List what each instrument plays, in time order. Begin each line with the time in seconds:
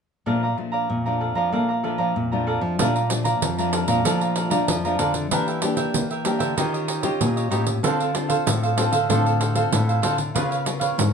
0.26 nylon-string guitar A#2 F3 A3 D4, cavaquinho A4 D5 F5 A#5
0.43 cavaquinho D5 F5 A#5
0.57 nylon-string guitar F3 A3 D4, muted cavaquinho stroke
0.72 cavaquinho D5 F5 A#5
0.89 nylon-string guitar F2 A#2
1.06 nylon-string guitar F3 A3 D4, cavaquinho D5 F5 A#5
1.20 cavaquinho A4 D5 F5 A#5
1.35 nylon-string guitar F3, cavaquinho D5 F5 A#5
1.52 nylon-string guitar A#2 F3 A3 A#3 D4, cavaquinho A4 D5 F5 A#5
1.69 cavaquinho D5 F5 A#5
1.83 nylon-string guitar F3 A3 D4, cavaquinho A4 D5 F5 A#5
1.98 nylon-string guitar F3, cavaquinho D5 F5 A#5
2.16 nylon-string guitar F2 A#2
2.32 nylon-string guitar F3 A3 D4, cavaquinho D5 F5 A#5
2.47 cavaquinho A4 D5 F5 A#5
2.61 nylon-string guitar F3, muted cavaquinho stroke
2.79 nylon-string guitar A#2 F3 A3 D4, cavaquinho A4 D5 F5 A#5, pandeiro
2.95 cavaquinho D5 F5 A#5, pandeiro
3.10 nylon-string guitar F3 A3 D4, muted cavaquinho stroke, pandeiro
3.24 cavaquinho D5 F5 A#5, pandeiro
3.42 nylon-string guitar F2 F3, pandeiro
3.58 nylon-string guitar F3 A3 D4, cavaquinho D5 F5 A#5, pandeiro
3.73 cavaquinho A4 D5 F5 A#5, pandeiro
3.88 nylon-string guitar A#2 F3 A3 D4, cavaquinho D5 F5 A#5, pandeiro
4.05 nylon-string guitar A#2 F3 A3 D4, cavaquinho A4 D5 F5 A#5, pandeiro
4.21 cavaquinho D5 F5 A#5, pandeiro
4.35 cavaquinho A4 D5 F5 A#5, pandeiro
4.50 nylon-string guitar F3 A3 D4, cavaquinho D5 F5 A#5, pandeiro
4.68 nylon-string guitar F2 F3, pandeiro
4.85 nylon-string guitar F3 A3 D4, cavaquinho D5 F5 A#5, pandeiro
4.99 nylon-string guitar D3, cavaquinho A4 D5 F5 A#5, pandeiro
5.14 muted cavaquinho stroke, pandeiro
5.31 nylon-string guitar E3 A#3 D4 G4, cavaquinho D4 A#4 E5 G5, pandeiro
5.47 cavaquinho A#4 E5 G5, pandeiro
5.62 nylon-string guitar A#3 D4 G4, muted cavaquinho stroke, pandeiro
5.76 cavaquinho A#4 E5 G5, pandeiro
5.94 nylon-string guitar E3 A#3, pandeiro
6.10 cavaquinho A#4 E5 G5, pandeiro
6.25 nylon-string guitar A#3 D4 G4, cavaquinho D4 A#4 E5 G5, pandeiro
6.39 nylon-string guitar D3, cavaquinho A#4 E5 G5, pandeiro
6.57 nylon-string guitar D#3 C#4 F4 G4, cavaquinho D#4 G4 C#5 D#5, pandeiro
6.74 cavaquinho G4 C#5 D#5, pandeiro
6.88 cavaquinho D#4 G4 C#5 D#5, pandeiro
7.03 nylon-string guitar C#4 F4 G4, cavaquinho G4 C#5 D#5, pandeiro
7.21 nylon-string guitar A#2, pandeiro
7.36 cavaquinho G4 C#5 D#5, pandeiro
7.50 nylon-string guitar A2 C#4 F4 G4, cavaquinho D#4 G4 C#5 D#5, pandeiro
7.67 muted cavaquinho stroke, pandeiro
7.83 nylon-string guitar D3 C4 F4 A4, cavaquinho D4 A4 C5 F5, pandeiro
8.00 cavaquinho A4 C5 F5, pandeiro
8.14 nylon-string guitar C4 F4 A4, muted cavaquinho stroke, pandeiro
8.29 cavaquinho A4 C5 F5, pandeiro
8.46 nylon-string guitar A2, pandeiro
8.63 cavaquinho A4 C5 F5, pandeiro
8.77 nylon-string guitar C4 F4 A4, cavaquinho D4 A4 C5 F5, pandeiro
8.92 nylon-string guitar D3, cavaquinho A4 C5 F5, pandeiro
9.09 nylon-string guitar A2 D3 C4 F4 A4, cavaquinho D4 A4 C5 F5, pandeiro
9.26 cavaquinho A4 C5 F5, pandeiro
9.39 cavaquinho D4 A4 C5 F5, pandeiro
9.55 nylon-string guitar C4 F4 A4, cavaquinho A4 C5 F5, pandeiro
9.71 nylon-string guitar A2, pandeiro
9.88 cavaquinho A4 C5 F5, pandeiro
10.02 nylon-string guitar D3 C4 F4 A4, cavaquinho D4 A4 C5 F5, pandeiro
10.18 muted cavaquinho stroke, pandeiro
10.34 nylon-string guitar C#3 B3 F4 A#4, cavaquinho F4 B4 C#5 F5, pandeiro
10.51 cavaquinho B4 C#5 F5, pandeiro
10.65 nylon-string guitar B3 F4 A#4, muted cavaquinho stroke, pandeiro
10.80 cavaquinho B4 C#5 F5, pandeiro
10.98 nylon-string guitar G#2, pandeiro